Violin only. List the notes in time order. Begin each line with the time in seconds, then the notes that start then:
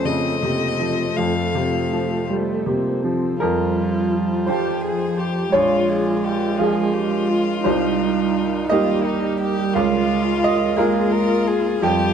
0.05 D#5
1.16 F5
4.49 G4
4.84 G#4
5.19 G4
5.54 F4
5.89 G#4
6.23 G4
6.58 F4
8.70 F4
9.04 D#4
9.40 G4
9.74 F4
10.77 G#4
11.11 A#4
11.47 G#4
11.83 G4